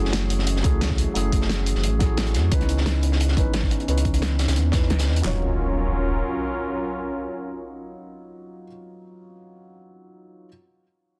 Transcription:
0.00 0.63 F#1 medium
0.00 5.21 E3 medium
0.00 0.61 F#3 medium
0.00 0.62 A3 medium
0.00 2.49 A3 medium
0.00 2.49 C#4 medium
0.00 0.63 E4 medium
0.00 0.63 G#4 loud
0.00 5.20 G#4 medium
0.05 snare soft
0.13 snare loud
0.13 closed hi-hat medium
0.30 closed hi-hat medium
0.39 snare soft
0.47 closed hi-hat medium
0.56 snare soft
0.63 1.06 C#2 medium
0.63 1.12 F#3 medium
0.63 1.13 A3 medium
0.63 1.14 E4 medium
0.63 1.14 G#4 medium
0.63 kick loud
0.63 closed hi-hat medium
0.81 snare loud
0.81 closed hi-hat medium
0.90 kick medium
0.90 snare soft
0.98 closed hi-hat medium
1.14 1.74 F#1 medium
1.14 1.98 F#3 medium
1.14 1.98 A3 medium
1.14 1.99 E4 medium
1.14 1.99 G#4 loud
1.14 closed hi-hat medium
1.32 kick medium
1.32 closed hi-hat medium
1.41 snare soft
1.49 snare loud
1.49 closed hi-hat medium
1.66 closed hi-hat medium
1.75 1.85 F#1 loud
1.75 snare soft
1.83 2.36 A1 medium
1.83 closed hi-hat medium
1.99 2.49 F#3 medium
1.99 2.49 A3 medium
1.99 2.50 E4 medium
1.99 2.51 G#4 loud
1.99 kick medium
1.99 snare soft
1.99 closed hi-hat medium
2.17 snare loud
2.17 closed hi-hat medium
2.27 closed hi-hat soft
2.34 2.50 F#2 medium
2.34 snare soft
2.34 closed hi-hat medium
2.50 3.36 C#2 loud
2.50 3.34 E3 medium
2.50 5.22 B3 medium
2.50 3.35 C#4 medium
2.50 5.22 D#4 medium
2.50 3.35 D#4 medium
2.50 3.36 B4 medium
2.50 kick loud
2.50 closed hi-hat medium
2.61 snare soft
2.61 closed hi-hat soft
2.69 closed hi-hat medium
2.77 snare soft
2.86 snare loud
2.86 closed hi-hat medium
3.03 closed hi-hat medium
3.12 snare soft
3.20 closed hi-hat medium
3.28 snare soft
3.36 3.78 G#1 medium
3.36 3.85 E3 medium
3.36 3.86 C#4 medium
3.36 3.86 D#4 medium
3.36 3.87 B4 medium
3.36 kick medium
3.36 closed hi-hat medium
3.54 snare loud
3.54 closed hi-hat medium
3.63 kick medium
3.63 snare soft
3.71 closed hi-hat medium
3.80 closed hi-hat soft
3.87 4.47 C#2 medium
3.87 4.70 E3 medium
3.87 4.71 C#4 medium
3.87 4.72 D#4 medium
3.87 4.72 B4 loud
3.87 closed hi-hat medium
3.98 closed hi-hat medium
4.05 kick medium
4.05 closed hi-hat soft
4.05 closed hi-hat medium
4.14 closed hi-hat medium
4.22 snare loud
4.22 closed hi-hat medium
4.39 snare loud
4.39 closed hi-hat medium
4.48 4.58 C#2 medium
4.48 snare loud
4.48 closed hi-hat medium
4.56 4.92 E2 medium
4.56 closed hi-hat medium
4.72 5.22 E3 medium
4.72 5.22 C#4 medium
4.72 5.22 D#4 medium
4.72 5.23 B4 medium
4.72 kick medium
4.72 snare loud
4.72 snare soft
4.72 closed hi-hat medium
4.82 snare soft
4.90 5.09 C#2 medium
4.90 snare loud
4.90 closed hi-hat medium
4.99 snare medium
4.99 closed hi-hat medium
5.07 5.23 E2 medium
5.07 snare soft
5.07 closed hi-hat medium
5.16 closed hi-hat medium
5.22 6.23 D#1 medium
5.22 8.64 F#3 medium
5.22 8.67 F#3 medium
5.22 8.67 C#4 medium
5.22 8.66 D#4 medium
5.22 8.67 F4 medium
5.22 8.67 A#4 medium
5.22 snare medium
5.22 clap medium
5.22 impact medium
5.27 8.69 C#5 medium

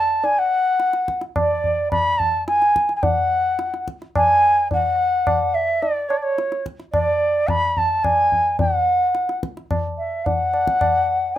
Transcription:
0.00 0.26 A5 medium
0.24 0.40 G#5 medium
0.24 tabla tin medium
0.39 1.22 F#5 medium
0.80 tabla te medium
0.93 tabla te medium
1.08 tabla ke medium
1.21 tabla te medium
1.36 1.89 D5 medium
1.36 tabla na medium
1.36 tabla ge medium
1.64 tabla ge soft
1.91 2.20 B5 medium
1.91 tabla na medium
1.91 tabla ge medium
2.18 2.47 A5 medium
2.18 tabla ge soft
2.47 2.93 G#5 medium
2.47 tabla te medium
2.62 tabla te medium
2.76 tabla ke medium
2.89 tabla te medium
2.96 3.05 G#5 soft
3.03 3.87 F#5 medium
3.03 tabla tin medium
3.03 tabla ge medium
3.59 tabla te medium
3.74 tabla te soft
3.88 tabla ke medium
4.02 tabla te medium
4.15 4.68 G#5 medium
4.15 tabla na medium
4.15 tabla ge medium
4.71 5.56 F#5 medium
4.71 tabla tin medium
4.71 tabla ge medium
5.27 tabla na medium
5.27 tabla ge medium
5.54 5.84 E5 medium
5.83 6.10 D5 medium
5.83 tabla tin medium
6.09 6.18 C#5 medium
6.09 tabla na medium
6.17 6.24 D5 medium
6.23 6.65 C#5 medium
6.38 tabla te medium
6.52 tabla te medium
6.66 tabla ke medium
6.80 tabla te soft
6.92 7.50 D5 medium
6.92 tabla na medium
6.92 tabla ge medium
7.48 7.79 B5 loud
7.48 tabla na medium
7.48 tabla ge medium
7.77 8.06 A5 medium
7.77 tabla ge soft
8.04 8.60 G#5 loud
8.04 tabla na medium
8.04 tabla ge medium
8.32 tabla ge soft
8.59 9.39 F#5 medium
8.59 tabla tin medium
8.59 tabla ge medium
9.15 tabla te medium
9.29 tabla te medium
9.43 tabla ke medium
9.57 tabla te medium
9.71 tabla na medium
9.71 tabla ge medium
9.98 10.27 E5 medium
10.25 11.36 F#5 medium
10.25 tabla tin medium
10.25 tabla ge medium
10.54 tabla na medium
10.67 tabla ke medium
10.81 tabla na medium
10.81 tabla ge medium
11.35 11.38 G#5 medium

